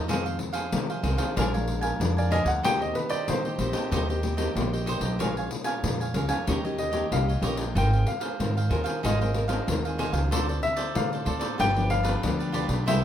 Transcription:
0.08 F2 D#3 G#3 C4 D#4 G#4 C5 F5, pandeiro
0.25 G#4 C5 F5, pandeiro
0.39 muted cavaquinho stroke, pandeiro
0.53 G#4 C5 F5, pandeiro
0.72 C3 D#3 F3 G#3 C4, pandeiro
0.90 G#4 C5 F5, pandeiro
1.03 C2 D#3 G#3 C4 D#4 G#4 C5 F5, pandeiro
1.18 G#4 C5 F5, pandeiro
1.36 A#1 A#2 F3 G#3 D4 A#4 F5 G#5, pandeiro
1.54 F3 G#3 D4 A#4 F5 G#5, pandeiro
1.68 pandeiro
1.81 A#4 F5 G#5, pandeiro
2.00 F2 F3 G#3 D4, pandeiro
2.17 A#4 D5 F5 G#5, pandeiro
2.31 D4 A#4 D#5 F5 G#5, pandeiro
2.45 D2 A#4 F5 F#5 G#5, pandeiro
2.63 D#2 D#3 A#3 C4 D#4 G4 C5 D#5 G5, pandeiro
2.80 G4 C5 D#5, pandeiro
2.95 B4, muted cavaquinho stroke, pandeiro
3.09 G4 C5 D5 D#5, pandeiro
3.28 A#2 D#3 A#3 C4 G4 C5, pandeiro
3.45 G4 C5 D#5, pandeiro
3.58 A#1 A#3 C4 D#4 G4 C5 D#5, pandeiro
3.73 G4 C5 D#5, pandeiro
3.91 D#2 D#3 D#4 G4 C5 D#5, pandeiro
4.08 A#3 C4 G4 C5 D#5, pandeiro
4.23 A#3 C4 G4, pandeiro
4.37 A#3 C4 G4 C5 D#5, pandeiro
4.55 A#1 A#2 A#3 C4 G4, pandeiro
4.73 G4 C5 D#5, pandeiro
4.86 D#4 G4 C5 D#5, pandeiro
5.00 B1 G4 C5 D#5, pandeiro
5.19 A#1 A#2 G#3 C#4 F4 A#4 C#5 F5 G#5, pandeiro
5.37 C#5 F5 G#5, pandeiro
5.51 muted cavaquinho stroke, pandeiro
5.64 C#5 F5 G#5, pandeiro
5.83 F2 A#2 G#3 C#4 F4, pandeiro
6.00 C#5 F5 G#5, pandeiro
6.14 C#2 G#3 C#4 F4 A#4 C#5 F5 G#5, pandeiro
6.29 C#5 F5 G#5, pandeiro
6.47 D#2 D#3 A#3 C#4 D#4 G4 C#5 D#5, pandeiro
6.65 A#3 C#4 G4 C#5 D#5, pandeiro
6.78 D#5, pandeiro
6.92 A#3 C#4 G4 C#5 D#5, pandeiro
7.11 C2 A#2 A#3 C#4 G4 F5, pandeiro
7.28 G4 C#5 D#5, pandeiro
7.42 A#1 A#3 C#4 D#4 G4 C#5 D#5, pandeiro
7.56 G4 C#5 D#5, pandeiro
7.75 G#1 G#3 C4 D#4 F4 G#4 A#4 C5 F5 G5, pandeiro
7.93 G#4 C5 F5, pandeiro
8.07 F5, muted cavaquinho stroke, pandeiro
8.20 G#4 C5 F5, pandeiro
8.39 G#2 D#3 C4 F4 A#4, pandeiro
8.57 G#4 C5 F5, pandeiro
8.69 D#2 C4 D#4 F4 G#4 A#4 C5 F5, pandeiro
8.84 G#4 C5 F5, pandeiro
9.03 G#1 G#3 D#4 G#4 C5 D#5 F5, pandeiro
9.21 C4 F4 G#4 A#4 C5 F5, pandeiro
9.34 C4 F4 A#4, pandeiro
9.48 C4 F4 G#4 A#4 C5 F5, pandeiro
9.67 D#2 D#3 C4 F4 A#4, pandeiro
9.85 G#4 C5 F5, pandeiro
9.98 D#4 G#4 C5 F5, pandeiro
10.12 C#2 G#4 C5 F5, pandeiro
10.31 D2 D3 C4 F4 A4 C5 D5, pandeiro
10.48 A4 C5 D5, pandeiro
10.62 E5, muted cavaquinho stroke, pandeiro
10.76 A4 C5 D5, pandeiro
10.95 A2 D3 C4 F4 A4 F5, pandeiro
11.12 A4 C5 D5, pandeiro
11.25 D2 C4 F4 A4 C5 D5, pandeiro
11.39 A4 C5 D5, pandeiro
11.58 G1 G2 F3 B3 D4 F4 G4 B4 D5 G5, pandeiro
11.75 F3 B3 D4 G4 B4 D5, pandeiro
11.90 F5, pandeiro
12.03 G4 B4 D5, pandeiro
12.23 D2 D3 F3 B3 D4, pandeiro
12.39 G4 B4 D5, pandeiro
12.52 F4 G4 B4 D5, pandeiro
12.68 B1 G4 B4 D5, pandeiro
12.86 C2 C3 G3 B3 E4 B4 C5 E5 G5, pandeiro

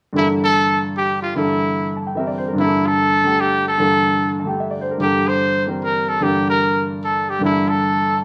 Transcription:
0.13 G2 D3 E3 A#3
0.17 E4 A4
0.44 A4
0.97 G4
1.22 F4
1.35 G2 D3 E3 A#3 E4 A4
1.97 A5
2.07 G5
2.15 E3 G3 C4 A#4 E5
2.27 D5
2.38 C5
2.48 A#4
2.53 G2 D3
2.59 E3 A#3 E4
2.64 A4
2.87 A4
3.23 D3 A3 G4
3.40 G4
3.68 A4
3.78 G2 D3 E3 A#3 A4
4.40 A5
4.44 D3 A3 G4
4.49 G5
4.60 E5
4.71 D5
4.81 C5
4.91 A#4
4.98 G2 D3 E3 A#3 G4
5.03 A4
5.28 C5
5.66 E3 G3 C4 A#4
5.83 A#4
6.09 A4
6.19 G2 D3 E3 A#3 G4
6.24 A#4
6.50 A#4
7.04 A4
7.30 G4
7.39 G2 D3 E3 A#3
7.45 E4 A4
7.69 A4

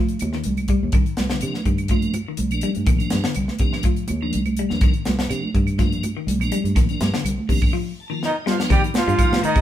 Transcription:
Already playing: F3
0.09 closed hi-hat
0.19 D#2, closed hi-hat, high conga, claves
0.33 D#3, snare
0.44 C2, closed hi-hat, high conga
0.57 closed hi-hat, high conga, claves
0.68 G3, kick, closed hi-hat
0.83 D#2
0.92 C2 D#3, kick, closed hi-hat, claves
1.06 closed hi-hat
1.17 C2, snare, closed hi-hat, high conga
1.30 D3, snare
1.41 C3 F3 A#3 D4, closed hi-hat, claves
1.54 snare, high conga
1.65 G2 D#3, kick, closed hi-hat
1.78 closed hi-hat, claves
1.88 F3 A#3 D4, kick, closed hi-hat, high conga
2.02 closed hi-hat, high conga
2.14 closed hi-hat, high conga, claves
2.28 D#3
2.37 C2, closed hi-hat, high conga
2.51 A#1 F3 A#3 D4, closed hi-hat, claves
2.61 G3, closed hi-hat
2.75 G2, closed hi-hat, high conga
2.86 A#1 D#3, kick, closed hi-hat, claves
2.99 F3 A#3 D4, closed hi-hat
3.10 G2, snare, closed hi-hat, high conga
3.24 D3, snare
3.35 C2, closed hi-hat, claves
3.48 snare, high conga
3.59 C3 D#3 F3 A#3 D4, kick, closed hi-hat
3.73 snare, claves
3.83 F3, kick, closed hi-hat, high conga
3.96 closed hi-hat
4.08 D#2, closed hi-hat, high conga, claves
4.21 D#3 F3 A#3 D4
4.31 C2, closed hi-hat, high conga
4.46 closed hi-hat, high conga, claves
4.57 G3, closed hi-hat
4.69 D#2 F3 A#3 D4, snare
4.81 C2 D#3, kick, snare, closed hi-hat, claves
4.94 closed hi-hat
5.05 C2, snare, closed hi-hat, high conga
5.19 muted clean electric guitar stroke, snare
5.30 C3 F3 A#3 D4, closed hi-hat, claves
5.43 high conga
5.54 G2 D#3, kick, closed hi-hat
5.67 closed hi-hat, claves
5.78 F3 A#3 D4, kick, snare, closed hi-hat, high conga
5.92 closed hi-hat, high conga
6.03 closed hi-hat, high conga, claves
6.17 D#3
6.27 C2, closed hi-hat, high conga
6.40 A#1 F3 A#3 D4, closed hi-hat, high conga, claves
6.52 G3, closed hi-hat
6.64 G2, closed hi-hat, high conga
6.76 A#1 D#3, kick, snare, closed hi-hat, claves
6.89 F3 A#3 D4, closed hi-hat
7.01 G2, snare, closed hi-hat, high conga
7.14 D3, snare
7.25 C2, closed hi-hat, claves
7.38 high conga
7.49 C3 D#3 F3 A#3 D4, kick, open hi-hat
7.62 kick, claves
7.73 F3
8.00 A5
8.10 D#3 F3 A#3 F4
8.23 D#3 D#4 D#5 G5, snare
8.40 D#5
8.46 F3 G3 F4, snare
8.50 F5
8.55 F3 C5
8.59 A#3 D4, snare
8.70 C3 D#3 F3 G3 A#3 D#4 G4 G5, kick, snare, closed hi-hat, high conga, low conga, claves
8.84 closed hi-hat
8.94 F3 F4 F5, muted fingered electric bass stroke, snare, closed hi-hat, high conga
9.07 G2 G3, closed hi-hat, low conga
9.18 F3 A#3 D#4, kick, closed hi-hat, high conga, claves
9.31 C3, snare, high conga
9.43 D#3 D#4 D#5, muted fingered electric bass stroke, closed hi-hat
9.55 C3, kick, closed hi-hat, claves

